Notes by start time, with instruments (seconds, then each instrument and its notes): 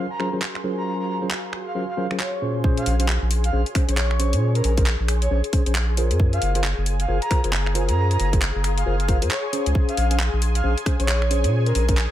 Already playing: ambient pad F#4 A#4 F5 G#5 C6, analog synth pad G#4 G#5
0.11 soft synth lead A#5
0.20 tine electric piano F#3 C#4 F4 G#4 A#4 C5, finger snap
0.33 tine electric piano F#3 C#4 F4 G#4 A#4 C5
0.42 clap
0.55 finger snap
0.64 tine electric piano F#3 C#4 F4 G#4 A#4 C5
0.77 soft synth lead A#5
0.86 soft synth lead A#5
1.00 soft synth lead A#5
1.09 soft synth lead A#5
1.22 tine electric piano F#3 C#4 F4 G#4 A#4 C5
1.31 clap
1.53 finger snap
1.66 soft synth lead F5
1.75 tine electric piano F#3 C#4 F4 G#4 A#4 C5, soft synth lead F5
1.89 soft synth lead F5
1.97 tine electric piano F#3 C#4 F4 G#4 A#4 C5, soft synth lead F5
2.11 tine electric piano F#3 C#4 F4 G#4 A#4 C5, finger snap
2.20 soft synth lead C#5, clap
2.42 tine electric piano A#2 C#4 F4 G#4 C5
2.64 tine electric piano C#4 G#4 C5, analog synth pad G#4 G#5, ambient pad G#4, kick
2.77 soft synth lead F5, closed hi-hat
2.86 sub bass A#1, ambient pad C#5, soft synth lead F5, open hi-hat
3.00 tine electric piano C#4 G#4 C5, soft synth lead F5, closed hi-hat
3.08 clap
3.22 sub bass A#1
3.31 open hi-hat
3.44 soft synth lead F5, closed hi-hat
3.53 sub bass A#1, tine electric piano C#4 G#4 C5
3.66 closed hi-hat
3.75 tine electric piano C#4 G#4 C5, finger snap, kick, open hi-hat
3.89 sub bass A#1, tine electric piano C#4 G#4 C5, soft synth lead C#5, closed hi-hat
3.97 clap
4.11 finger snap
4.20 tine electric piano C#4 G#4 C5, open hi-hat
4.33 sub bass A#2, closed hi-hat
4.55 soft synth lead A#4, closed hi-hat
4.64 sub bass A#1, soft synth lead A#4, open hi-hat
4.77 tine electric piano C#4 G#4 C5, soft synth lead A#4, kick, closed hi-hat
4.86 clap
5.00 sub bass A#1
5.08 finger snap, open hi-hat
5.22 soft synth lead C#5, closed hi-hat
5.31 sub bass A#1, tine electric piano C#4 G#4 C5, soft synth lead C#5
5.44 closed hi-hat
5.53 tine electric piano C#4 G#4 C5, kick, open hi-hat
5.66 sub bass A#1, tine electric piano C#4 G#4 C5, closed hi-hat
5.75 clap
5.97 tine electric piano F4 G#4 A#4 C5, open hi-hat
6.11 sub bass F#2, closed hi-hat
6.20 kick
6.27 ambient pad F5
6.33 soft synth lead F5, closed hi-hat
6.42 sub bass F#1, soft synth lead F5, open hi-hat
6.55 tine electric piano F4 G#4 A#4 C5, soft synth lead F5, ambient pad A#5, closed hi-hat
6.64 clap
6.78 sub bass F#1
6.86 open hi-hat
7.00 soft synth lead F5, closed hi-hat
7.08 sub bass F#1, tine electric piano F4 G#4 A#4 C5, ambient pad C6
7.22 soft synth lead A#5, closed hi-hat
7.31 tine electric piano F4 G#4 A#4 C5, finger snap, kick, open hi-hat
7.44 sub bass F#1, tine electric piano F4 G#4 A#4 C5, closed hi-hat
7.53 clap
7.66 finger snap
7.75 tine electric piano F4 G#4 A#4 C5, open hi-hat
7.89 sub bass F#2, soft synth lead A#5, closed hi-hat
7.97 soft synth lead A#5
8.11 soft synth lead A#5, closed hi-hat
8.20 sub bass F#1, soft synth lead A#5, open hi-hat
8.33 tine electric piano F4 G#4 A#4 C5, kick, closed hi-hat
8.42 clap
8.55 sub bass F#1
8.64 finger snap, open hi-hat
8.77 soft synth lead F5, closed hi-hat
8.86 sub bass F#1, tine electric piano F4 G#4 A#4 C5, soft synth lead F5
9.00 soft synth lead F5, closed hi-hat
9.08 tine electric piano F4 G#4 A#4 C5, soft synth lead F5, kick, open hi-hat
9.22 sub bass F#2, tine electric piano F4 G#4 A#4 C5, closed hi-hat
9.30 soft synth lead C#5, clap
9.53 tine electric piano C#4 G#4 C5, open hi-hat
9.66 sub bass C#2, closed hi-hat
9.75 kick
9.88 soft synth lead F5, closed hi-hat
9.94 sub bass A#1, ambient pad C#5, soft synth lead F5, open hi-hat
10.11 tine electric piano C#4 G#4 C5, soft synth lead F5, closed hi-hat
10.20 clap
10.33 sub bass A#1
10.42 open hi-hat
10.55 soft synth lead F5, closed hi-hat
10.64 sub bass A#1, tine electric piano C#4 G#4 C5
10.78 closed hi-hat
10.86 tine electric piano C#4 G#4 C5, finger snap, kick, open hi-hat
10.99 sub bass A#1, tine electric piano C#4 G#4 C5, soft synth lead C#5, closed hi-hat
11.09 clap
11.22 finger snap
11.31 tine electric piano C#4 G#4 C5, open hi-hat
11.44 sub bass A#2, closed hi-hat
11.66 soft synth lead A#4, closed hi-hat
11.75 sub bass A#1, soft synth lead A#4, open hi-hat
11.88 tine electric piano C#4 G#4 C5, soft synth lead A#4, kick, closed hi-hat
11.97 clap